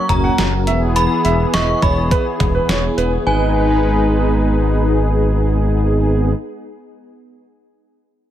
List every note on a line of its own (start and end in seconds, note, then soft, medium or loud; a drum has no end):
0.00 0.65 F#3 medium
0.00 0.63 A#3 medium
0.00 0.63 C#4 medium
0.00 0.65 C#4 medium
0.00 0.63 F#4 medium
0.00 0.65 A#4 medium
0.00 0.10 C#6 medium
0.09 0.30 F#1 loud
0.09 0.63 A#5 medium
0.09 closed hi-hat medium
0.09 mid tom medium
0.24 0.36 F#5 medium
0.38 0.69 F#1 loud
0.38 snare loud
0.38 closed hi-hat medium
0.67 1.07 E1 medium
0.67 3.24 E3 medium
0.67 3.23 B3 medium
0.67 3.24 B3 medium
0.67 3.23 E4 medium
0.67 3.23 G#4 medium
0.67 3.24 G#4 medium
0.67 0.79 E5 medium
0.67 closed hi-hat medium
0.96 1.55 B5 loud
0.96 closed hi-hat medium
1.25 1.45 E1 loud
1.25 1.37 E5 medium
1.25 closed hi-hat medium
1.53 1.74 E1 loud
1.53 1.78 D#5 medium
1.53 1.83 C#6 loud
1.53 snare loud
1.53 closed hi-hat medium
1.82 2.13 E1 medium
1.82 1.94 C#5 medium
1.82 2.94 B5 medium
1.82 kick medium
1.82 closed hi-hat medium
2.11 2.23 B4 medium
2.11 kick medium
2.11 closed hi-hat medium
2.40 2.60 E1 medium
2.40 kick medium
2.40 closed hi-hat medium
2.40 mid tom medium
2.55 2.67 B4 medium
2.69 2.89 E1 loud
2.69 2.81 C#5 medium
2.69 snare loud
2.69 closed hi-hat medium
2.98 3.18 E1 medium
2.98 3.10 B4 medium
2.98 closed hi-hat medium
3.26 6.33 G#1 medium
3.26 6.33 G#3 medium
3.26 6.33 B3 medium
3.26 6.33 D#4 medium
3.26 6.33 G#4 medium
3.26 6.33 B4 medium
3.26 4.96 B4 medium
3.26 6.57 G#5 medium